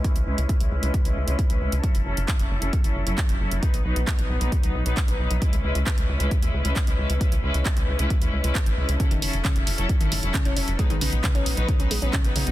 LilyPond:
<<
  \new Staff \with { instrumentName = "String section" } { \time 4/4 \key cis \minor \tempo 4 = 134 <gis cis' e' b'>8 <gis cis' e' b'>8 <gis cis' e' b'>16 <gis cis' e' b'>8 <gis cis' e' b'>8 <gis cis' e' b'>8 <gis cis' e' b'>8 <gis cis' e' b'>16 <gis cis' e' b'>8 | <fis cis' e' a'>8 <fis cis' e' a'>8 <fis cis' e' a'>16 <fis cis' e' a'>8 <fis cis' e' a'>8 <fis cis' e' a'>8 <fis cis' e' a'>8 <fis cis' e' a'>16 <fis cis' e' a'>8 | <fis b dis' b'>8 <fis b dis' b'>8 <fis b dis' b'>16 <fis b dis' b'>8 <fis b dis' b'>8 <fis b dis' b'>8 <fis b dis' b'>8 <fis b dis' b'>16 <fis b dis' b'>8 | <gis cis' e' b'>8 <gis cis' e' b'>8 <gis cis' e' b'>16 <gis cis' e' b'>8 <gis cis' e' b'>8 <gis cis' e' b'>8 <gis cis' e' b'>8 <gis cis' e' b'>16 <gis cis' e' b'>8 |
<gis cis' e' b'>8 <gis cis' e' b'>8 <gis cis' e' b'>16 <gis cis' e' b'>8 <gis cis' e' b'>8 <gis cis' e' b'>8 <gis cis' e' b'>8 <gis cis' e' b'>16 <gis cis' e' b'>8 | <fis cis' e' a'>8 <fis cis' e' a'>8 <fis cis' e' a'>16 <fis cis' e' a'>8 <fis cis' e' a'>8 <fis cis' e' a'>8 <fis cis' e' a'>8 <fis cis' e' a'>16 <fis cis' e' a'>8 | <fis b dis' b'>8 <fis b dis' b'>8 <fis b dis' b'>16 <fis b dis' b'>8 <fis b dis' b'>8 <fis b dis' b'>8 <fis b dis' b'>8 <fis b dis' b'>16 <fis b dis' b'>8 | }
  \new Staff \with { instrumentName = "Synth pluck" } { \clef bass \time 4/4 \key cis \minor r1 | r1 | r1 | r1 |
r1 | cis16 dis16 r8 cis16 r4 dis16 gis,16 r16 cis16 cis'16 cis'16 r16 | gis16 dis16 cis16 r16 cis16 cis'16 r8 dis16 cis'16 gis16 cis'16 cis16 r16 cis16 b,16 | }
  \new Staff \with { instrumentName = "Analog synth bass" } { \clef bass \time 4/4 \key cis \minor r16 cis,16 cis,16 cis,16 r16 cis,16 cis,16 cis,16 r16 cis,16 cis,16 cis,16 r16 cis,16 cis,16 cis,16 | r16 fis,,16 fis,,16 fis,,16 r16 fis,,16 fis,,16 fis,,16 r16 gis,,16 fis,,16 fis,,16 r16 fis,,16 fis,,16 fis,,16 | r16 b,,16 b,,16 b,,16 r16 b,,16 b,,16 b,,16 r16 cis,16 b,,16 b,,16 r16 b,,16 b,,16 b,,16 | r16 cis,16 cis,16 cis,16 r16 cis,16 cis,16 cis,16 r16 dis,16 cis,16 cis,16 r16 cis,16 cis,16 cis,16 |
r16 cis,16 cis,16 cis,16 r16 cis,16 cis,16 cis,16 r16 dis,16 cis,16 cis,16 r16 gis,,16 cis,16 cis,16 | r16 fis,,16 fis,,16 fis,,16 r16 fis,,16 fis,,16 fis,,16 r16 gis,,16 fis,,16 fis,,16 r16 fis,,16 fis,,16 fis,,16 | r16 b,,16 b,,16 b,,16 r16 b,,16 b,,16 b,,16 r16 cis,16 b,,16 b,,16 r16 b,,16 b,,16 b,,16 | }
  \new DrumStaff \with { instrumentName = "Drums" } \drummode { \time 4/4 <hh bd>16 hh8 hh16 <hh bd>16 hh8 hh16 <hh bd>16 hh8 hh16 <hh bd>16 hh8 hh16 | <hh bd>16 hh8 hh16 <hc hh bd>16 hh8 hh16 <hh bd>16 hh8 hh16 <hc hh bd>16 hh8 hh16 | <hh bd>16 hh8 hh16 <hc hh bd>16 hh8 hh16 <hh bd>16 hh8 hh16 <hc hh bd>16 hh8 hh16 | <hh bd>16 hh8 hh16 <hc hh bd>16 hh8 hh16 <hh bd>16 hh8 hh16 <hc hh bd>16 hh8 hh16 |
<hh bd>16 hh8 hh16 <hc hh bd>16 hh8 hh16 <hh bd>16 hh8 hh16 <hc hh bd>16 hh8 hh16 | <hh bd>16 hh16 hho16 hh16 <hc hh bd>16 hh16 hho16 hh16 <hh bd>16 hh16 hho16 hh16 <hc hh bd>16 hh16 hho16 hh16 | <hh bd>16 hh16 hho16 hh16 <hc hh bd>16 hh16 hho16 hh16 <hh bd>16 hh16 hho16 hh16 <hc hh bd>16 hh16 hho16 hh16 | }
>>